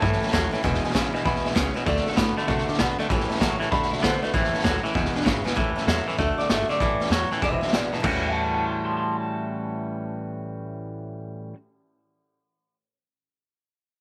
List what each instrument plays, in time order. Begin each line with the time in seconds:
Already playing: clean electric guitar A4
0.01 upright bass G2, clean electric guitar A2 E3, steel-string acoustic guitar G3 C#4 G4 A4, upright piano C#5 E5 A5, kick, snare
0.12 snare
0.20 steel-string acoustic guitar G3 C#4 G4 A4, upright piano C#5 E5 A5, muted upright bass stroke, snare
0.28 upright piano C#5 E5 A5, snare
0.32 upright bass D#2, steel-string acoustic guitar A2 E3 G3 C#4 G4 A4, clean electric guitar A2 F#3, kick, snare, hi-hat pedal
0.51 clean electric guitar A2 E3, steel-string acoustic guitar G3 C#4 G4 A4, upright piano C#5 E5 A5, snare
0.63 upright bass E1, clean electric guitar E2 B2, steel-string acoustic guitar E3 G#3 D4 E4 B4, upright piano B4 E5 G#5, kick, snare
0.74 snare
0.83 steel-string acoustic guitar D4 E4 B4, upright piano B4 E5 G#5, muted upright bass stroke, snare
0.90 steel-string acoustic guitar E3, snare
0.95 upright bass G#1, clean electric guitar E2 C#3, steel-string acoustic guitar G#3 D4 E4 B4, upright piano B4 E5 G#5, kick, snare, hi-hat pedal
1.13 upright bass B1, clean electric guitar E2 B2, steel-string acoustic guitar D4 E4 B4, upright piano B4 E5 G#5, snare
1.24 upright bass B1, clean electric guitar E2 B2 B5, steel-string acoustic guitar G#3 D4 E4 B4, upright piano B4 E5 G#5, kick, snare
1.36 snare
1.44 upright bass C#2, steel-string acoustic guitar D4 E4 B4, upright piano B4 E5 G#5, clean electric guitar E5, snare
1.51 steel-string acoustic guitar E3, snare
1.55 upright bass C#2, clean electric guitar E2 C#3 C#5, steel-string acoustic guitar G#3 D4 E4 B4, upright piano B4 E5 G#5, kick, snare, hi-hat pedal
1.74 clean electric guitar E2 B2 B4, steel-string acoustic guitar D4 E4 B4, upright piano B4 E5 G#5, snare
1.86 upright bass D2, clean electric guitar D3 A3 D5, steel-string acoustic guitar D3 A3 C4 F#4 A4, upright piano D5 F#5 A5, kick, snare
1.96 snare
2.06 steel-string acoustic guitar F#4 A4, clean electric guitar A4, upright piano D5 F#5 A5, muted upright bass stroke, snare
2.10 steel-string acoustic guitar C4, snare
2.16 upright bass A2, clean electric guitar D3 B3 F#4, steel-string acoustic guitar D3 A3 C4 F#4 A4, upright piano D5 A5, kick, snare, hi-hat pedal
2.37 clean electric guitar D3 A3 E4, steel-string acoustic guitar C4 F#4 A4, upright piano D5 F#5 A5, muted upright bass stroke, snare
2.47 upright bass C3, clean electric guitar D3 A3 F#4, steel-string acoustic guitar A3 C4 F#4, upright piano D5 F#5 A5, kick, snare
2.51 steel-string acoustic guitar A4
2.58 snare
2.67 clean electric guitar D4, steel-string acoustic guitar F#4 A4, upright piano D5 F#5 A5, muted upright bass stroke, snare
2.71 steel-string acoustic guitar C4, snare
2.79 upright bass B2, steel-string acoustic guitar D3 A3 C4 F#4 A4, clean electric guitar D3 B3, upright piano D5 F#5 A5, kick, snare, hi-hat pedal
2.98 clean electric guitar D3 A3, steel-string acoustic guitar C4 F#4 A4, upright piano D5 F#5 A5, muted upright bass stroke, snare
3.09 upright bass A1, clean electric guitar A2 E3, steel-string acoustic guitar A2 E3 G3 C#4 G4 A4, upright piano C#5 E5 A5, kick, snare
3.20 snare
3.29 steel-string acoustic guitar G3 C#4 G4 A4, upright piano C#5 E5 A5, muted upright bass stroke, snare
3.35 snare
3.40 upright bass C#2, clean electric guitar A2 F#3, steel-string acoustic guitar A2 E3 G3 C#4 G4 A4, upright piano C#5 E5 A5, kick, snare, hi-hat pedal
3.59 upright bass C#2, clean electric guitar A2 E3, steel-string acoustic guitar C#4 G4 A4, upright piano C#5 E5 A5, snare
3.64 steel-string acoustic guitar G3
3.71 upright bass D2, clean electric guitar D3 A3 B5, steel-string acoustic guitar A3 C4 F#4, upright piano D5 F#5 A5, kick, snare
3.75 steel-string acoustic guitar A4
3.83 snare
3.90 upright bass B2, steel-string acoustic guitar F#4 A4, upright piano D5 F#5 A5, clean electric guitar E5, snare
3.95 steel-string acoustic guitar C4, snare
4.02 clean electric guitar D3 B3 C5, upright bass D3, steel-string acoustic guitar D3 A3 C4 F#4 A4, upright piano D5 A5, kick, snare, hi-hat pedal
4.22 clean electric guitar D3 A3 B4, steel-string acoustic guitar C4 F#4 A4, upright piano D5 F#5 A5, muted upright bass stroke, snare
4.33 upright bass A1, steel-string acoustic guitar A2 E3 G3 C#4 E4 A4, clean electric guitar A2 E3 C5, upright piano C#5 E5 A5, kick, snare
4.44 snare
4.53 steel-string acoustic guitar G3 C#4 E4 A4, clean electric guitar A4, upright piano C#5 E5 A5, snare
4.59 snare
4.64 upright bass D#2, steel-string acoustic guitar A2 E3 G3 C#4 E4 A4, clean electric guitar A2 F#3 F#4, upright piano C#5 E5 A5, kick, snare, hi-hat pedal
4.83 clean electric guitar A2 E3 E4, steel-string acoustic guitar G3 C#4 E4 A4, upright piano C#5 E5 A5, muted upright bass stroke, snare
4.94 upright bass E1, clean electric guitar E2 B2 F#4, steel-string acoustic guitar G#3 D4 E4 B4, upright piano B4 E5 G#5, kick, snare
5.05 snare
5.14 clean electric guitar D4, steel-string acoustic guitar D4 E4 B4, upright piano B4 E5 G#5, muted upright bass stroke, snare
5.21 snare
5.25 upright bass G#1, clean electric guitar E2 C#3, steel-string acoustic guitar E3 G#3 D4 E4 B4, upright piano B4 E5 G#5, kick, snare, hi-hat pedal
5.44 clean electric guitar E2 B2, steel-string acoustic guitar D4 E4 B4, upright piano B4 E5 G#5, muted upright bass stroke, snare
5.55 upright bass A1, steel-string acoustic guitar A2 E3 G3 C#4 E4 A4, clean electric guitar A2 E3, upright piano C#5 E5 A5, kick, snare
5.76 steel-string acoustic guitar G3 C#4 E4 A4, upright piano C#5 E5 A5, muted upright bass stroke, snare
5.86 upright bass E2, clean electric guitar A2 F#3 E5, steel-string acoustic guitar G3 C#4 E4, upright piano C#5 E5, snare, hi-hat pedal
5.90 steel-string acoustic guitar A4
6.06 clean electric guitar A2 E3, steel-string acoustic guitar G3 C#4 E4 A4, upright piano C#5 E5 A5, muted upright bass stroke, snare
6.18 upright bass D2, steel-string acoustic guitar D3 A3 C4 F#4 A4, clean electric guitar D3 A3, upright piano D5 F#5 A5, kick, snare
6.38 steel-string acoustic guitar C4 F#4 A4, upright piano D5 F#5 A5, clean electric guitar D5, snare
6.49 upright bass G1, clean electric guitar D3 A3 E5, steel-string acoustic guitar A3 C4 F#4 A4, upright piano D5 F#5 A5, snare, hi-hat pedal
6.69 clean electric guitar D3 A3 D5, steel-string acoustic guitar C4 F#4 A4, upright piano D5 F#5 A5, snare
6.80 upright bass A1, steel-string acoustic guitar A2 E3 G3 C#4 E4 A4, clean electric guitar A2 E3, upright piano C#5 E5 A5, kick, snare
6.99 steel-string acoustic guitar G3 C#4 E4 A4, upright piano C#5 E5 A5, muted upright bass stroke, snare
7.06 snare
7.10 upright bass E2, clean electric guitar A2 F#3 C#5, steel-string acoustic guitar G3 C#4 E4, upright piano C#5 E5 A5, snare, hi-hat pedal
7.14 steel-string acoustic guitar A4
7.30 clean electric guitar A2 E3, steel-string acoustic guitar C#4 E4 A4, upright piano C#5 E5 A5, muted upright bass stroke, snare
7.35 steel-string acoustic guitar G3
7.41 upright bass E1, clean electric guitar E2 B2 C5 E5, steel-string acoustic guitar E3 G#3 D4 E4 B4, upright piano B4 E5 G#5, kick, snare
7.61 steel-string acoustic guitar D4 E4 B4, upright piano B4 E5 G#5, clean electric guitar C5 E5, muted upright bass stroke, snare
7.67 snare
7.72 upright bass A1, clean electric guitar E2 B2 D5 F#5, steel-string acoustic guitar G#3 D4 E4 B4, upright piano B4 E5 G#5, snare, hi-hat pedal
7.92 upright bass G#1, clean electric guitar E2 B2 A5, steel-string acoustic guitar D4 E4 B4, upright piano B4 E5 G#5, snare
8.00 upright bass A1, steel-string acoustic guitar A2 E3, clean electric guitar A2 E3, upright piano C#5 E5, kick, floor tom, crash
8.05 clean electric guitar G3 C#4 F#4, steel-string acoustic guitar G3 C#4, upright piano A5
8.09 steel-string acoustic guitar F#4 B4
8.24 clean electric guitar F#5 A5
8.34 clean electric guitar F#5 A5
8.54 clean electric guitar F#5 A5
8.65 clean electric guitar A5 C6
8.85 clean electric guitar A5 C6
8.97 clean electric guitar A5 C6
9.17 clean electric guitar A5